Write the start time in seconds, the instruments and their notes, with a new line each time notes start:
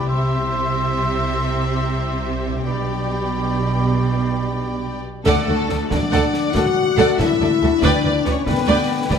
Already playing: harp C3 E4, clarinet G4, viola section G4
0.01 harp G4
0.06 double bass section C2, cello section C3, harp C5, violin section C5 E5, cor anglais E5, flute C6
0.11 french horn section G3 E4
2.48 harp B2
2.52 harp D4
2.57 harp G4
2.61 cello section B2, french horn section D4, viola section G4, clarinet G4, harp D5, violin section D5 G5, cor anglais D5
2.66 double bass section B1, flute B5
5.25 cello section D2, double bass section D2, harp D3, french horn section A3, violin section A4 D5 F#5, viola section A4, concert bass drum, snare, crash
5.38 harp A3
5.47 cello section D2, double bass section D2, harp D4, violin section F#4 A4, viola section A4
5.60 harp F#4
5.69 cello section D2, double bass section D2, viola section A4, violin section A4 D5, harp D5, snare
5.82 harp F#4
5.90 cello section D2, double bass section D2, french horn section D4, violin section F#4 A4 D5, viola section A4, harp F#5, concert bass drum, snare
6.03 harp D6
6.11 cello section D2, double bass section D2, viola section A4, violin section D5 F#5, harp F#5, snare
6.34 harp F#5, snare
6.46 harp D6
6.53 double bass section D2, cello section D2, french horn section F#4, violin section A4 D5 F#5, viola section A4, harp F#5, concert bass drum, snare
6.66 harp D6
6.76 harp D5
6.88 harp F#4
6.97 cello section D2, double bass section D2, harp D4, viola section A4, violin section D5 F#5, snare
7.08 harp A3
7.18 double bass section D2, cello section D2, harp D4, french horn section E4, violin section F#4 A4 E5, viola section A4, concert bass drum, snare
7.31 harp A3
7.41 double bass section D2, cello section D2, harp D4, violin section A4 D5, viola section A4
7.52 harp A3
7.62 double bass section D2, cello section D2, harp D4, violin section F#4 A4, viola section A4
7.72 harp A3
7.82 double bass section D2, cello section D2, harp D3, french horn section D4, viola section B4 D5, violin section D5 G5, concert bass drum, snare
7.94 harp B3
8.04 double bass section D2, cello section D2, harp D4, violin section G4 B4, viola section B4 D5
8.16 harp G4
8.25 double bass section D2, cello section D2, french horn section C#4, viola section B4 D5, harp B4, violin section B4 C#5 D5, snare
8.37 harp D5
8.46 double bass section D2, cello section D2, french horn section B3, viola section B4 D5, violin section B4, harp G5, concert bass drum, snare
8.50 violin section G4
8.58 harp B5
8.68 double bass section D2, cello section D2, viola section B4 D5, violin section D5 G5
8.80 harp B5
8.91 harp G5
9.01 harp B5
9.10 cello section D2, double bass section D2, french horn section G3, violin section G4 B4 D5, viola section B4 D5, harp G5, concert bass drum, snare